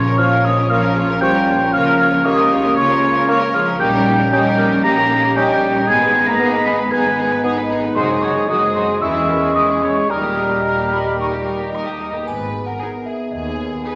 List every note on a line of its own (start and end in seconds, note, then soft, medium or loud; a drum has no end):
0.00 1.70 A#1 medium
0.00 0.69 A#2 medium
0.00 0.15 C#3 medium
0.00 0.82 F3 medium
0.00 1.69 F3 medium
0.00 0.94 C#4 medium
0.00 3.63 C#4 medium
0.00 0.16 F4 medium
0.00 0.56 F4 medium
0.00 0.20 C#5 loud
0.00 0.18 F5 medium
0.00 0.14 C#6 medium
0.05 0.18 C#4 medium
0.05 0.19 A#4 medium
0.05 0.43 A#4 medium
0.18 0.26 F3 medium
0.18 0.35 F3 medium
0.18 0.31 A#3 medium
0.18 0.31 F4 medium
0.18 0.69 C#5 medium
0.18 0.31 C#5 medium
0.18 0.47 F5 loud
0.18 1.21 F5 medium
0.18 0.27 C#6 medium
0.18 0.42 F6 medium
0.31 0.44 C#4 medium
0.31 0.45 C#4 medium
0.31 0.45 A#4 medium
0.31 1.33 C#5 medium
0.44 0.52 D#3 medium
0.44 0.57 A#3 medium
0.44 0.58 F4 medium
0.44 1.08 A#4 medium
0.44 0.58 C#5 medium
0.44 0.69 D#5 medium
0.44 0.69 D#6 medium
0.57 0.70 C#4 medium
0.57 0.71 C#4 medium
0.57 1.59 F4 medium
0.57 0.71 A#4 medium
0.69 1.75 A#2 medium
0.69 1.21 F3 loud
0.69 0.82 A#3 medium
0.69 0.82 F4 medium
0.69 0.82 A#4 medium
0.69 0.83 C#5 medium
0.69 1.20 F5 loud
0.69 1.18 F6 medium
0.82 0.96 C#4 medium
0.82 0.97 C#4 medium
0.82 0.97 A#4 medium
0.95 1.09 A#3 medium
0.95 1.10 F4 medium
0.95 1.08 G#4 medium
0.95 1.09 C#5 medium
1.09 1.22 C#4 medium
1.09 1.46 A#4 medium
1.09 1.22 A#4 medium
1.21 1.38 F3 medium
1.21 1.73 G3 medium
1.21 1.34 A#3 medium
1.21 1.34 F4 medium
1.21 1.32 G4 medium
1.21 1.34 C#5 medium
1.21 2.37 F5 medium
1.21 1.74 G5 loud
1.21 1.31 C#6 medium
1.21 1.70 G6 medium
1.34 1.47 C#4 medium
1.34 1.49 C#4 medium
1.34 1.48 A#4 medium
1.34 2.11 C#5 medium
1.47 1.61 A#3 medium
1.47 1.75 F4 medium
1.47 1.62 F4 medium
1.47 2.62 A#4 medium
1.47 1.61 C#5 medium
1.60 1.73 C#4 medium
1.60 1.75 C#4 medium
1.60 1.74 A#4 medium
1.73 3.76 C#2 medium
1.73 2.75 C#3 medium
1.73 2.24 F3 loud
1.73 3.63 A#3 medium
1.73 1.86 A#3 medium
1.73 1.87 F4 medium
1.73 2.07 A#4 loud
1.73 1.85 C#5 medium
1.73 2.27 F5 loud
1.73 2.22 F6 loud
1.86 2.88 A#3 medium
1.86 1.99 C#4 medium
1.86 2.01 C#4 medium
1.86 1.99 A#4 medium
1.99 2.13 A#3 medium
1.99 3.01 F4 medium
1.99 2.13 F4 medium
1.99 2.12 C#5 medium
2.12 2.26 C#4 medium
2.12 2.25 A#4 medium
2.12 2.49 C#5 medium
2.24 2.76 D#3 medium
2.24 2.41 A#3 medium
2.24 2.38 A#3 medium
2.24 2.38 F4 medium
2.24 2.79 G4 loud
2.24 2.38 C#5 medium
2.24 2.77 D#5 loud
2.24 3.27 A#5 medium
2.24 2.34 C#6 medium
2.24 2.73 D#6 medium
2.38 2.52 C#4 medium
2.38 2.53 C#4 medium
2.38 2.52 A#4 medium
2.38 3.41 F5 medium
2.50 2.64 A#3 medium
2.50 2.65 F4 medium
2.50 3.14 C#5 medium
2.50 2.64 C#5 medium
2.64 2.77 C#4 medium
2.64 2.78 C#4 medium
2.64 3.66 A#4 medium
2.64 2.77 A#4 medium
2.76 3.82 C#3 medium
2.76 3.53 C#3 loud
2.76 2.89 A#3 medium
2.76 2.89 F4 medium
2.76 3.28 F4 medium
2.76 3.54 C#5 loud
2.76 2.89 C#5 medium
2.76 3.50 C#6 medium
2.89 5.90 A#3 medium
2.89 3.03 C#4 medium
2.89 3.03 A#4 medium
3.03 3.16 A#3 medium
3.03 3.82 F4 medium
3.03 3.16 F4 medium
3.03 3.15 C#5 medium
3.15 3.29 C#4 medium
3.15 3.28 A#4 medium
3.15 3.53 C#5 medium
3.28 3.45 A#3 medium
3.28 3.41 A#3 medium
3.28 3.41 F4 medium
3.28 3.40 A#4 loud
3.28 3.40 C#5 medium
3.28 5.90 A#5 medium
3.28 3.38 C#6 medium
3.40 3.54 C#4 medium
3.40 3.54 A#4 medium
3.40 3.83 F5 medium
3.54 3.80 F3 medium
3.54 3.68 A#3 medium
3.54 3.67 F4 medium
3.54 3.79 G#4 medium
3.54 3.67 C#5 medium
3.54 4.44 C#5 medium
3.54 3.67 F5 loud
3.54 3.78 F6 medium
3.66 3.80 C#4 medium
3.66 3.81 C#4 medium
3.66 3.80 A#4 medium
3.66 4.18 A#4 medium
3.79 5.84 A#1 medium
3.79 4.83 A#2 medium
3.79 4.31 G3 loud
3.79 3.92 A#3 medium
3.79 5.84 C#4 medium
3.79 3.92 D#4 medium
3.79 7.92 D#4 loud
3.79 4.06 G4 medium
3.79 3.92 G4 medium
3.79 4.32 G5 loud
3.79 4.29 G6 loud
3.93 4.07 C#4 medium
3.93 4.06 G4 medium
3.93 4.06 A#4 medium
4.06 4.20 A#3 medium
4.06 5.09 C#4 medium
4.06 4.20 D#4 medium
4.06 4.18 D#4 medium
4.06 4.19 G4 medium
4.19 4.33 C#4 medium
4.19 4.32 G4 medium
4.19 4.32 A#4 medium
4.32 4.83 G3 loud
4.32 4.45 A#3 medium
4.32 4.49 C#4 medium
4.32 4.45 D#4 medium
4.32 4.44 G4 medium
4.32 5.34 D#5 medium
4.32 4.83 G5 loud
4.32 4.42 D#6 medium
4.32 4.80 G6 medium
4.45 4.59 C#4 medium
4.45 4.58 G4 medium
4.45 4.58 A#4 medium
4.45 5.48 C#5 medium
4.58 4.71 A#3 medium
4.58 4.72 D#4 medium
4.58 4.71 G4 medium
4.58 5.22 A#4 medium
4.58 4.70 A#4 medium
4.70 4.84 C#4 medium
4.70 5.74 D#4 medium
4.70 4.84 G4 medium
4.70 4.84 A#4 medium
4.83 5.90 A#2 medium
4.83 5.36 A#3 loud
4.83 4.96 A#3 medium
4.83 4.96 D#4 medium
4.83 4.96 G4 medium
4.83 5.35 A#5 loud
4.83 5.32 A#6 loud
4.97 5.90 G3 medium
4.97 5.10 C#4 medium
4.97 5.11 G4 medium
4.97 5.10 A#4 medium
5.09 5.23 A#3 medium
5.09 5.90 C#4 medium
5.09 5.23 D#4 medium
5.09 5.23 G4 medium
5.09 5.89 G4 loud
5.22 5.36 C#4 medium
5.22 5.36 G4 medium
5.22 5.61 A#4 medium
5.22 5.36 A#4 medium
5.35 5.88 G3 loud
5.35 5.48 A#3 medium
5.35 5.52 C#4 medium
5.35 5.49 D#4 medium
5.35 5.48 G4 medium
5.35 6.51 D#5 medium
5.35 5.88 G5 loud
5.35 5.46 D#6 medium
5.35 5.84 G6 medium
5.48 5.62 C#4 medium
5.48 5.62 G4 medium
5.48 5.62 A#4 medium
5.48 5.90 C#5 medium
5.61 5.75 A#3 medium
5.61 5.76 D#4 medium
5.61 5.75 G4 medium
5.74 5.88 C#4 medium
5.74 6.12 D#4 medium
5.74 5.89 G4 medium
5.74 5.87 A#4 medium
5.87 7.92 G#1 medium
5.87 6.90 G#2 medium
5.87 6.26 G#3 loud
5.87 5.99 B3 medium
5.87 7.96 B3 medium
5.87 6.00 D#4 medium
5.87 5.99 G#4 medium
5.87 6.93 G#4 loud
5.87 6.26 G#5 loud
5.87 6.24 G#6 medium
6.00 7.04 D#3 medium
6.00 6.13 G#3 medium
6.00 6.14 B3 medium
6.00 6.13 B4 medium
6.13 6.26 B3 medium
6.13 7.17 D#4 medium
6.13 6.27 D#4 medium
6.13 6.26 G#4 medium
6.26 6.39 G#3 medium
6.26 6.65 A#3 loud
6.26 6.40 B3 medium
6.26 6.39 B4 medium
6.26 6.63 B4 medium
6.26 6.66 A#5 loud
6.26 6.63 A#6 loud
6.39 6.55 B3 medium
6.39 6.52 B3 medium
6.39 6.52 D#4 medium
6.39 6.52 G#4 medium
6.39 7.43 G#5 medium
6.39 6.50 D#6 medium
6.52 6.66 G#3 medium
6.52 6.66 B3 medium
6.52 6.65 B4 medium
6.52 7.56 D#5 medium
6.65 6.74 B3 loud
6.65 6.79 B3 medium
6.65 6.79 D#4 medium
6.65 6.79 G#4 medium
6.65 7.30 B4 medium
6.65 6.92 B5 loud
6.65 6.90 B6 medium
6.78 6.92 G#3 medium
6.78 6.92 B3 medium
6.78 7.83 G#4 medium
6.78 6.92 B4 medium
6.91 7.98 G#2 medium
6.91 7.43 G#3 medium
6.91 7.04 B3 medium
6.91 7.05 D#4 medium
6.91 7.04 G#4 medium
6.91 7.44 B4 medium
6.91 7.44 G#5 loud
6.91 7.40 G#6 medium
7.05 7.98 D#3 medium
7.05 7.18 G#3 medium
7.05 7.18 B3 medium
7.05 7.18 B4 medium
7.18 7.31 B3 medium
7.18 8.22 D#4 medium
7.18 7.31 D#4 medium
7.18 7.31 G#4 medium
7.31 7.44 G#3 medium
7.31 7.44 B3 medium
7.31 7.70 B4 medium
7.31 7.44 B4 medium
7.43 7.59 B3 medium
7.43 7.57 B3 medium
7.43 8.47 D#4 medium
7.43 7.56 D#4 medium
7.43 7.56 G#4 medium
7.43 8.48 G#5 medium
7.43 7.54 D#6 medium
7.57 7.71 G#3 medium
7.57 7.70 B3 medium
7.57 7.70 B4 medium
7.57 8.61 D#5 medium
7.70 7.83 B3 medium
7.70 7.83 D#4 medium
7.70 7.83 G#4 medium
7.70 7.99 B4 medium
7.83 7.96 G#3 medium
7.83 7.97 B3 medium
7.83 8.35 G#4 medium
7.83 7.96 B4 medium
7.95 8.99 F#1 medium
7.95 9.04 F#2 medium
7.95 8.21 C3 medium
7.95 8.09 F#3 medium
7.95 8.45 G#3 medium
7.95 8.45 D#4 medium
7.95 8.09 D#4 medium
7.95 8.09 F#4 medium
7.95 8.08 C5 loud
7.95 8.20 C6 medium
7.95 8.44 D#6 medium
8.09 9.04 F#3 medium
8.09 8.23 G#3 medium
8.09 8.23 C4 medium
8.09 8.22 G#4 medium
8.21 8.30 C#3 medium
8.21 8.36 F#3 medium
8.21 8.35 D#4 medium
8.21 8.35 F#4 medium
8.21 8.50 C#5 medium
8.21 8.46 C#6 medium
8.36 8.49 G#3 medium
8.36 8.49 C4 medium
8.36 8.49 G#4 medium
8.48 8.57 D#3 medium
8.48 8.61 F#3 medium
8.48 9.00 G#3 medium
8.48 8.61 D#4 medium
8.48 9.00 D#4 medium
8.48 8.61 F#4 medium
8.48 8.82 F#4 medium
8.48 8.75 D#5 medium
8.48 9.55 G#5 medium
8.48 9.00 D#6 medium
8.48 8.73 D#6 medium
8.62 8.75 G#3 medium
8.62 8.75 C4 medium
8.62 8.75 G#4 medium
8.62 9.04 D#5 medium
8.75 8.83 C3 medium
8.75 8.88 F#3 medium
8.75 8.89 D#4 medium
8.75 8.88 F#4 medium
8.75 9.27 G#4 soft
8.75 8.87 C5 medium
8.75 9.00 C6 medium
8.88 9.02 G#3 medium
8.88 9.02 C4 medium
8.88 9.04 D#4 medium
8.88 9.02 G#4 medium
9.01 10.10 E2 medium
9.01 9.54 E3 medium
9.01 10.12 E3 medium
9.01 9.14 E3 medium
9.01 10.08 G#3 medium
9.01 10.11 G#3 medium
9.01 10.10 C#4 medium
9.01 9.14 C#4 medium
9.01 9.14 E4 medium
9.01 9.30 G#4 medium
9.01 9.54 E5 loud
9.01 10.08 C#6 medium
9.01 9.51 E6 medium
9.15 9.28 G#3 medium
9.15 10.12 G#3 medium
9.15 9.29 E4 soft
9.15 9.29 G#4 medium
9.28 9.42 E3 soft
9.28 9.42 C#4 medium
9.28 9.42 E4 medium
9.28 9.81 G#4 medium
9.28 9.55 A#4 medium
9.42 9.55 G#3 medium
9.42 9.56 E4 soft
9.42 9.55 G#4 medium
9.42 9.67 C#5 medium
9.55 9.63 D#3 medium
9.55 9.68 E3 soft
9.55 9.68 C#4 medium
9.55 9.68 E4 medium
9.55 10.09 G#4 medium
9.55 9.67 D#5 medium
9.55 10.12 G#5 medium
9.55 9.80 D#6 medium
9.69 9.82 G#3 soft
9.69 9.82 E4 medium
9.69 9.82 G#4 soft
9.82 9.90 C#3 medium
9.82 9.96 E3 medium
9.82 9.96 C#4 medium
9.82 9.96 E4 soft
9.82 10.12 G#4 medium
9.82 10.12 C#5 medium
9.82 10.08 C#6 medium
9.96 10.10 G#3 soft
9.96 10.12 C#4 soft
9.96 10.10 E4 soft
9.96 10.10 G#4 soft
10.09 12.03 D#2 medium
10.09 11.70 A#2 medium
10.09 11.18 D#3 medium
10.09 12.00 G3 medium
10.09 10.22 G3 medium
10.09 12.00 G3 medium
10.09 10.22 D#4 medium
10.09 12.00 D#4 medium
10.09 11.97 G4 medium
10.09 10.23 A#4 medium
10.09 11.74 A#4 medium
10.09 11.69 A#5 medium
10.09 10.59 D#6 medium
10.23 10.37 A#3 medium
10.23 11.31 A#3 soft
10.23 10.37 G4 soft
10.23 10.37 G4 medium
10.37 10.51 G3 soft
10.37 10.50 D#4 medium
10.37 11.46 G4 soft
10.37 10.51 A#4 soft
10.50 10.65 A#3 soft
10.50 10.64 G4 soft
10.50 10.64 G4 medium
10.50 10.91 D#5 soft
10.64 10.77 G3 soft
10.64 10.77 D#4 soft
10.64 10.77 A#4 medium
10.64 10.70 A#5 medium
10.64 11.73 A#5 medium
10.78 10.92 A#3 soft
10.78 10.91 G4 soft
10.78 10.92 G4 soft
10.92 11.06 G3 soft
10.92 11.05 D#4 soft
10.92 11.06 A#4 soft
10.92 11.59 D#5 soft
10.92 11.19 B5 medium
11.05 11.19 A#3 soft
11.05 11.18 G4 soft
11.05 11.19 G4 soft
11.05 12.13 A#4 soft
11.18 12.29 D#3 soft
11.18 11.32 G3 soft
11.18 11.31 D#4 medium
11.18 11.31 A#4 medium
11.18 11.25 C#6 medium
11.32 12.29 A#3 soft
11.32 11.46 A#3 soft
11.32 11.46 G4 soft
11.44 11.60 G3 soft
11.44 11.59 D#4 soft
11.44 12.30 G4 soft
11.44 11.59 A#4 soft
11.44 11.72 A#5 medium
11.58 11.73 A#3 soft
11.58 11.72 G4 soft
11.58 11.73 G4 medium
11.58 12.00 D#5 soft
11.72 11.86 G3 soft
11.72 11.85 D#4 medium
11.72 11.85 A#4 medium
11.72 12.29 A#5 soft
11.72 12.27 D#6 medium
11.86 12.01 A#3 soft
11.86 12.00 G4 soft
11.99 12.14 G3 soft
11.99 12.13 D#4 soft
11.99 12.14 A#4 soft
11.99 13.95 D#5 soft
12.10 13.95 G#2 soft
12.10 12.27 G4 soft
12.14 12.28 A#3 soft
12.14 13.95 B3 soft
12.14 12.30 A#4 soft
12.19 13.95 D#4 soft
12.23 12.71 G#2 medium
12.23 13.95 B3 medium
12.23 13.95 D#4 medium
12.23 13.95 G#4 soft
12.23 12.63 B4 medium
12.23 12.64 G#5 medium
12.28 12.71 G#1 medium
12.28 triangle soft
12.66 13.06 A#4 medium
12.66 13.03 F#5 medium
12.79 12.89 B3 soft
12.79 12.89 D#4 soft
12.79 12.87 G#4 soft
13.06 13.31 G#4 medium
13.06 13.30 E5 medium
13.32 13.76 D#2 medium
13.32 13.83 G#4 medium
13.32 13.81 D#5 medium
13.84 13.93 B3 soft
13.84 13.93 D#4 soft
13.84 13.93 G#4 soft
13.84 13.95 B4 medium
13.84 13.95 G#5 medium